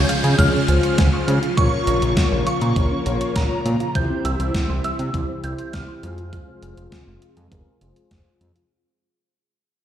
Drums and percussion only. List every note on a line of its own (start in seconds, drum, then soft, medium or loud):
0.09 closed hi-hat medium
0.24 closed hi-hat soft
0.39 kick loud
0.39 closed hi-hat medium
0.68 closed hi-hat medium
0.83 closed hi-hat soft
0.98 kick loud
0.98 snare loud
0.98 closed hi-hat medium
1.28 closed hi-hat medium
1.43 closed hi-hat soft
1.58 kick loud
1.58 closed hi-hat medium
1.87 closed hi-hat medium
2.02 closed hi-hat medium
2.17 kick loud
2.17 snare loud
2.17 closed hi-hat medium
2.47 closed hi-hat medium
2.61 closed hi-hat soft
2.76 kick loud
2.76 closed hi-hat medium
3.06 closed hi-hat medium
3.21 closed hi-hat medium
3.36 kick loud
3.36 snare loud
3.36 closed hi-hat medium
3.66 closed hi-hat medium
3.80 closed hi-hat soft
3.95 kick loud
3.95 closed hi-hat medium
4.25 closed hi-hat medium
4.40 closed hi-hat medium
4.55 kick loud
4.55 snare loud
4.55 closed hi-hat medium
4.84 closed hi-hat medium
4.99 closed hi-hat soft
5.14 kick loud
5.14 closed hi-hat medium
5.44 closed hi-hat medium
5.59 closed hi-hat medium
5.73 kick loud
5.73 snare loud
5.73 closed hi-hat medium
6.03 closed hi-hat medium
6.18 closed hi-hat soft
6.33 kick loud
6.33 closed hi-hat medium
6.63 closed hi-hat medium
6.77 closed hi-hat medium
6.92 kick loud
6.92 snare loud
6.92 closed hi-hat medium
7.22 closed hi-hat medium
7.37 closed hi-hat soft
7.52 kick loud
7.52 closed hi-hat medium
7.81 closed hi-hat medium
7.96 closed hi-hat soft
8.11 kick loud
8.11 snare loud
8.11 closed hi-hat medium
8.41 closed hi-hat medium
8.56 closed hi-hat soft